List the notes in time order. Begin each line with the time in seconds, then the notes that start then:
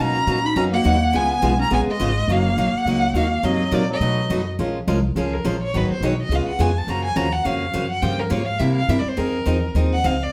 Already playing: B2
0.00 B2 F#3 A#3 C#4 D#4 F#4 A#5
0.27 A#2 B2 F#3 A#3 D#4 F#4
0.45 D#4 B5
0.56 F#2 B2 F#3 A#3 C#4 D#4 F#4 A#5
0.72 A#3 F#5
0.84 D#2 B2 F#3 A#3 D#4 F#4
1.13 C#2 C#3 G#3 B3 F4 G#4 G#5
1.42 B1 C#3 G#3 B3 F4 G#4
1.59 C#4 A#5
1.70 A#1 C#3 G#3 B3 F4 G#4 G#5
1.87 G#3, muted upright bass stroke
1.92 D#5
2.00 G#1 C#3 G#3 B3 F4 G#4
2.28 F#1 F#3 A#3 D#4 F#4
2.32 F5
2.57 A#1 F#3 A#3 D#4 F#4
2.74 A#3 F#5, muted upright bass stroke
2.85 C#2 F#3 A#3 D#4 F#4
3.13 D#2 F#3 A#3 D#4 F#4 F5
3.43 F#2 C3 F#3 A#3 D#4 A#4 D#5
3.71 A#2 C3 F#3 A#3 D#4 A#4 D5
3.90 F#3 D#5
4.00 B2 F#3 A3 D#4 F#4
4.30 F#2 B2 F#3 A3 D#4 F#4
4.59 A#1 F3 G#3 C#4 F4 A#4
4.87 C2 F3 G#3 C#4 F4 A#4
5.16 C#2 F3 G#3 C#4 F4 G#4 A#4
5.34 A#4
5.44 A#1 F3 G#3 C#4 F4 A#4 C5
5.63 C#5
5.74 G#1 D#3 F#3 B3 D#4 G#4 B4
5.90 C5, muted upright bass stroke
6.01 B1 D#3 F#3 B3 D#4 G#4
6.06 C#5
6.22 D#5
6.29 C#2 C#3 G#3 B3 F4 G#4
6.35 F5
6.46 F#5, muted upright bass stroke
6.59 F2 C#3 G#3 B3 F4 G#4 G#5
6.78 A5
6.87 F#2 C#3 F3 A#3 C#4 F#4 A#5
7.05 G#5
7.16 D#2 C#3 F3 A#3 C#4 F#4 A#5
7.32 F#5
7.45 F2 C#3 F3 A#3 C#4 F#4 F5
7.73 F#2 C#3 F3 A#3 C#4 F#4
7.90 F#5
8.02 G2 C#3 F3 A#3 F4 G4 G5
8.19 A#4
8.30 G#2 C#3 F3 A#3 F4 G4 C#5
8.45 F5
8.59 C3 G3 A#3 E4 G4 E5
8.75 F5
8.88 G2 C3 G3 A#3 E4 G4 E5
8.99 D5
9.05 C5, muted upright bass stroke
9.17 F2 F3 C4 D#4 G#4 A#4
9.46 E2 F3 C4 D#4 G#4
9.75 D#2 F3 C4 D#4 G#4
9.93 F#5
10.04 C#2 F3 C4 D#4 G#4 F5
10.23 D5